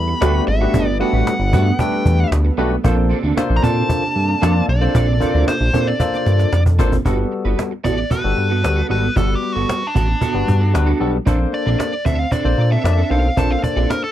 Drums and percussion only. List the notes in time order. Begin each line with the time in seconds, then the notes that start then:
0.22 cajon slap
0.61 cajon slap
0.74 cajon bass
1.00 cajon slap
1.14 cajon slap
1.27 cajon slap
1.40 cajon slap
1.53 cajon bass
1.79 cajon bass
2.06 cajon bass
2.32 cajon slap
2.71 cajon slap
2.84 cajon bass
3.11 cajon slap
3.24 cajon slap
3.38 cajon slap
3.63 cajon bass
3.77 cajon slap
3.89 cajon bass
4.16 cajon slap
4.43 cajon slap
4.82 cajon slap
4.95 cajon bass
5.08 cajon slap
5.21 cajon bass
5.48 cajon slap
5.61 cajon slap
5.74 cajon bass
5.87 cajon slap
6.00 cajon bass, cajon slap
6.14 cajon slap
6.26 cajon slap
6.39 cajon slap
6.53 cajon slap
6.66 cajon bass
6.79 cajon bass
6.92 cajon bass
7.05 cajon bass
7.32 cajon slap
7.45 cajon slap
7.59 cajon slap
7.71 cajon slap
7.85 cajon bass
7.98 cajon slap
8.11 cajon bass
8.64 cajon slap
9.16 cajon bass
9.43 cajon slap
9.56 cajon slap
9.69 cajon slap
9.82 cajon slap
9.96 cajon bass
10.09 cajon slap
10.21 cajon bass
10.48 cajon bass
10.75 cajon slap
11.14 cajon slap
11.27 cajon bass
11.53 cajon slap
11.80 cajon slap
11.93 cajon slap
12.06 cajon bass
12.32 cajon bass
12.58 cajon slap
12.85 cajon slap
13.37 cajon bass
13.63 cajon bass
13.90 cajon slap
14.03 cajon slap